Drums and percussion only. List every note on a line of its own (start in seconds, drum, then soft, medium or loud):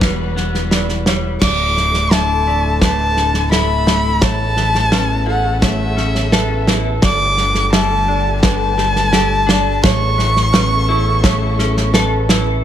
0.01 kick medium
0.01 snare medium
0.37 snare soft
0.55 snare soft
0.71 snare medium
0.89 snare soft
1.06 snare medium
1.42 kick medium
1.42 snare medium
1.42 crash medium
1.77 snare soft
1.94 snare soft
2.11 snare medium
2.81 kick medium
2.81 snare medium
3.17 snare soft
3.34 snare soft
3.52 snare medium
3.87 snare medium
4.22 kick medium
4.22 snare medium
4.57 snare soft
4.75 snare soft
4.92 snare medium
5.62 kick medium
5.62 snare medium
5.97 snare soft
6.15 snare soft
6.32 snare medium
6.67 snare medium
7.02 kick medium
7.02 snare medium
7.37 snare soft
7.55 snare soft
7.73 snare medium
8.43 kick medium
8.43 snare medium
8.78 snare soft
8.96 snare soft
9.13 snare medium
9.49 snare medium
9.84 kick loud
9.84 snare loud
10.19 snare soft
10.36 snare soft
10.54 snare medium
11.24 kick medium
11.24 snare medium
11.59 snare soft
11.77 snare soft
11.94 snare medium
12.29 snare medium